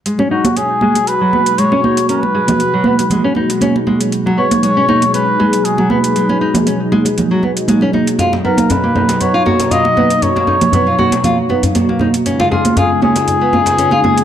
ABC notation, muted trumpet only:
X:1
M:4/4
L:1/8
Q:"Swing 16ths" 1/4=118
K:G#dor
V:1 name="Muted trumpet"
z F G2 B2 c2 | B6 z2 | z c c2 B2 G B- | B2 z6 |
z A B2 c2 d2 | c6 z2 | z E G G4- G |]